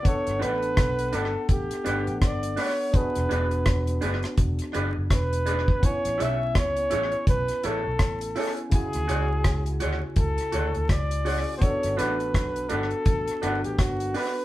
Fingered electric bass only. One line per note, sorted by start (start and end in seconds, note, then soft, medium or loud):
0.27 0.40 G1 loud
0.42 0.75 A1 medium
0.78 1.11 B1 loud
1.14 1.33 G1 loud
1.50 1.69 A1 loud
1.86 2.06 G1 medium
2.08 2.21 A1 medium
2.22 2.55 G1 medium
3.16 3.29 E1 medium
3.31 3.64 E1 medium
3.67 4.00 E1 medium
4.03 4.22 F#1 medium
4.38 4.58 E1 medium
4.75 4.95 F#1 medium
4.97 5.10 F#1 medium
5.11 5.65 E1 loud
6.05 6.20 A1 medium
6.20 6.56 B1 loud
6.56 6.89 C#2 loud
6.93 7.12 A1 medium
7.28 7.47 B1 loud
7.65 7.84 A1 loud
7.86 7.99 B1 medium
8.00 8.33 A1 loud
8.95 9.08 D2 medium
9.10 9.42 C#2 loud
9.45 9.78 C#2 loud
9.82 10.01 D2 medium
10.17 10.37 C#2 loud
10.54 10.73 D2 medium
10.76 10.89 D2 medium
10.90 11.43 C#2 medium
11.84 11.97 G1 medium
11.99 12.35 A1 medium
12.35 12.68 B1 loud
12.72 12.91 G1 loud
13.06 13.26 A1 medium
13.43 13.62 G1 medium
13.65 13.78 A1 medium
13.79 14.12 G1 loud